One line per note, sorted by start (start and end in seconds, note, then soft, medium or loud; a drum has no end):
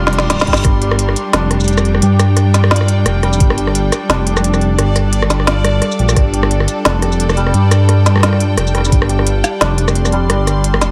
0.00 0.46 F1 loud
0.00 0.46 G3 medium
0.00 10.91 G3 medium
0.00 10.91 D4 medium
0.00 2.71 F4 medium
0.00 0.82 G4 medium
0.00 3.40 A#4 medium
0.00 1.67 C6 medium
0.00 reverse cymbal medium
0.07 snare medium
0.13 0.30 D5 medium
0.13 closed hi-hat medium
0.18 snare medium
0.30 2.76 D5 medium
0.30 snare medium
0.30 closed hi-hat medium
0.40 snare loud
0.40 shaker soft
0.47 0.63 G1 loud
0.47 3.22 G3 loud
0.47 kick medium
0.47 closed hi-hat soft
0.53 snare loud
0.53 shaker medium
0.65 1.15 G1 medium
0.65 10.91 D5 medium
0.65 kick loud
0.65 cross-stick medium
0.65 closed hi-hat medium
0.82 1.51 G4 medium
0.82 closed hi-hat medium
0.91 cross-stick medium
0.99 closed hi-hat medium
1.09 cross-stick medium
1.16 closed hi-hat medium
1.16 shaker soft
1.33 2.01 F1 medium
1.33 4.09 D4 loud
1.33 cross-stick medium
1.33 snare loud
1.33 closed hi-hat medium
1.51 2.02 G4 medium
1.51 cross-stick medium
1.51 closed hi-hat medium
1.60 shaker soft
1.64 4.42 G5 medium
1.64 closed hi-hat medium
1.64 shaker soft
1.68 shaker soft
1.73 shaker soft
1.78 cross-stick medium
1.78 shaker soft
1.85 closed hi-hat soft
1.95 cross-stick medium
2.02 3.05 G2 loud
2.02 3.57 G4 medium
2.02 closed hi-hat medium
2.19 cross-stick medium
2.19 closed hi-hat medium
2.19 shaker soft
2.37 cross-stick medium
2.37 closed hi-hat medium
2.54 snare medium
2.54 closed hi-hat medium
2.54 shaker soft
2.64 cross-stick medium
2.71 5.47 F4 medium
2.71 snare loud
2.76 closed hi-hat medium
2.81 cross-stick medium
2.88 closed hi-hat medium
3.06 3.39 F1 loud
3.06 5.13 G5 loud
3.06 cross-stick medium
3.06 closed hi-hat medium
3.23 7.36 G3 medium
3.23 cross-stick medium
3.23 closed hi-hat soft
3.30 10.91 A4 medium
3.30 shaker medium
3.40 3.91 G1 loud
3.40 kick loud
3.40 closed hi-hat medium
3.50 cross-stick medium
3.58 4.26 G4 medium
3.58 closed hi-hat medium
3.67 cross-stick medium
3.75 closed hi-hat medium
3.92 cross-stick medium
3.92 closed hi-hat medium
3.92 shaker soft
4.09 4.77 F1 medium
4.09 6.85 D4 loud
4.09 cross-stick medium
4.09 snare loud
4.09 closed hi-hat medium
4.27 4.78 G4 medium
4.27 closed hi-hat medium
4.37 cross-stick medium
4.37 shaker soft
4.42 7.19 D5 medium
4.42 closed hi-hat medium
4.54 cross-stick medium
4.54 shaker soft
4.61 closed hi-hat soft
4.78 5.81 G1 loud
4.78 5.99 G4 medium
4.78 cross-stick medium
4.78 closed hi-hat medium
4.96 cross-stick soft
4.96 closed hi-hat medium
4.96 shaker soft
5.13 closed hi-hat medium
5.22 cross-stick medium
5.30 snare medium
5.30 closed hi-hat medium
5.30 shaker soft
5.40 cross-stick soft
5.47 8.23 F4 medium
5.47 snare loud
5.47 closed hi-hat medium
5.65 cross-stick medium
5.65 closed hi-hat medium
5.82 8.28 D5 medium
5.82 cross-stick medium
5.82 closed hi-hat medium
5.92 shaker soft
5.99 6.15 A#1 loud
5.99 6.33 G4 medium
5.99 closed hi-hat soft
6.09 cross-stick medium
6.09 shaker medium
6.16 6.67 G1 medium
6.16 kick loud
6.16 cross-stick medium
6.16 closed hi-hat medium
6.33 7.02 G4 medium
6.33 closed hi-hat medium
6.43 cross-stick medium
6.51 closed hi-hat medium
6.60 cross-stick medium
6.68 closed hi-hat medium
6.68 shaker soft
6.85 7.53 F1 medium
6.85 9.60 D4 loud
6.85 cross-stick medium
6.85 snare loud
6.85 closed hi-hat medium
7.02 7.54 G4 medium
7.02 cross-stick soft
7.02 closed hi-hat medium
7.12 shaker soft
7.17 9.94 G5 medium
7.17 closed hi-hat medium
7.29 cross-stick medium
7.29 shaker soft
7.37 8.73 G3 loud
7.37 closed hi-hat soft
7.47 cross-stick soft
7.54 8.56 G2 loud
7.54 9.09 G4 medium
7.54 closed hi-hat medium
7.71 cross-stick medium
7.71 closed hi-hat medium
7.71 shaker soft
7.89 cross-stick medium
7.89 closed hi-hat medium
8.06 snare medium
8.06 closed hi-hat medium
8.06 shaker soft
8.16 cross-stick medium
8.17 cross-stick medium
8.21 10.91 F4 medium
8.21 cross-stick soft
8.23 cross-stick soft
8.23 snare loud
8.23 closed hi-hat medium
8.26 cross-stick soft
8.29 cross-stick soft
8.33 cross-stick medium
8.40 closed hi-hat medium
8.57 8.91 F1 loud
8.57 10.65 G5 loud
8.57 cross-stick medium
8.57 closed hi-hat medium
8.67 shaker soft
8.75 10.12 G3 medium
8.75 cross-stick soft
8.75 closed hi-hat soft
8.78 cross-stick soft
8.81 cross-stick soft
8.85 cross-stick soft
8.85 shaker medium
8.90 9.43 G1 loud
8.90 kick loud
8.90 cross-stick soft
8.90 closed hi-hat medium
9.02 cross-stick medium
9.09 9.78 G4 medium
9.09 closed hi-hat medium
9.19 cross-stick medium
9.27 closed hi-hat medium
9.44 cross-stick medium
9.44 closed hi-hat medium
9.44 shaker soft
9.61 10.29 F1 loud
9.61 10.91 D4 loud
9.61 cross-stick medium
9.61 snare loud
9.61 closed hi-hat medium
9.78 10.30 G4 medium
9.78 closed hi-hat medium
9.88 cross-stick medium
9.88 shaker soft
9.92 10.91 C6 medium
9.92 closed hi-hat medium
10.05 cross-stick medium
10.05 shaker soft
10.12 10.91 G3 loud
10.12 closed hi-hat soft
10.30 10.81 G1 loud
10.30 10.91 G4 medium
10.30 cross-stick medium
10.30 closed hi-hat medium
10.47 cross-stick medium
10.47 closed hi-hat medium
10.47 shaker soft
10.64 closed hi-hat medium
10.74 cross-stick medium
10.81 10.91 F1 loud
10.81 snare medium
10.81 closed hi-hat medium
10.81 shaker soft